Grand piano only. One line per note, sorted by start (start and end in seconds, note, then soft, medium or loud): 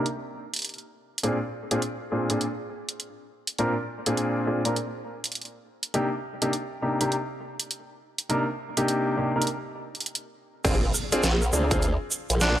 1.23 1.36 A#2 medium
1.23 1.36 C4 medium
1.23 1.36 D4 medium
1.23 1.36 F4 medium
1.23 1.36 G#4 loud
1.71 1.79 A#2 medium
1.71 1.79 C4 medium
1.71 1.79 D4 medium
1.71 1.79 F4 medium
1.71 1.79 G#4 loud
2.12 2.27 A#2 medium
2.12 2.27 C4 medium
2.12 2.27 D4 medium
2.12 2.27 F4 medium
2.12 2.27 G#4 medium
2.30 2.44 A#2 medium
2.30 2.44 C4 medium
2.30 2.44 D4 medium
2.30 2.44 F4 medium
2.30 2.44 G#4 medium
3.59 3.72 A#2 medium
3.59 3.72 C4 medium
3.59 3.72 D4 medium
3.59 3.72 F4 medium
3.59 3.72 A#4 loud
4.06 4.44 A#2 medium
4.06 4.44 C4 medium
4.06 4.44 D4 medium
4.06 4.44 F4 medium
4.06 4.44 G#4 loud
4.47 4.60 A#2 medium
4.47 4.60 C4 medium
4.47 4.60 D4 medium
4.47 4.60 F4 medium
4.47 4.60 G#4 medium
4.65 4.73 A#2 medium
4.65 4.73 C4 medium
4.65 4.73 D4 medium
4.65 4.73 F4 medium
4.65 4.73 A#4 medium
5.94 6.07 C3 medium
5.94 6.07 A#3 medium
5.94 6.07 D4 medium
5.94 6.07 D#4 medium
5.94 6.07 G4 loud
6.42 6.50 C3 medium
6.42 6.50 A#3 medium
6.42 6.50 D4 medium
6.42 6.50 D#4 medium
6.42 6.50 G4 loud
6.82 6.98 C3 medium
6.82 6.98 A#3 medium
6.82 6.98 D4 medium
6.82 6.98 D#4 medium
6.82 6.98 G4 medium
7.01 7.14 C3 medium
7.01 7.14 A#3 medium
7.01 7.14 D4 medium
7.01 7.14 D#4 medium
7.01 7.14 G4 medium
8.29 8.42 C3 medium
8.29 8.42 A#3 medium
8.29 8.42 D4 medium
8.29 8.42 D#4 medium
8.29 8.42 A#4 loud
8.77 9.15 C3 medium
8.77 9.15 A#3 medium
8.77 9.15 D4 medium
8.77 9.15 D#4 medium
8.77 9.15 G4 loud
9.17 9.30 C3 medium
9.17 9.30 A#3 medium
9.17 9.30 D4 medium
9.17 9.31 D#4 medium
9.17 9.31 G4 medium
9.36 9.44 C3 medium
9.36 9.44 A#3 medium
9.36 9.44 D4 medium
9.36 9.44 D#4 medium
9.36 9.44 A#4 medium
10.64 10.78 C4 loud
10.64 10.78 D4 medium
10.64 10.78 F4 medium
10.64 10.78 G#4 loud
11.12 11.20 C4 loud
11.12 11.20 D4 medium
11.12 11.20 F4 medium
11.12 11.20 G#4 loud
11.53 11.68 C4 medium
11.53 11.68 D4 medium
11.53 11.68 F4 medium
11.53 11.68 G#4 medium
11.71 11.85 C4 medium
11.71 11.85 D4 medium
11.71 11.85 F4 medium
11.71 11.85 G#4 medium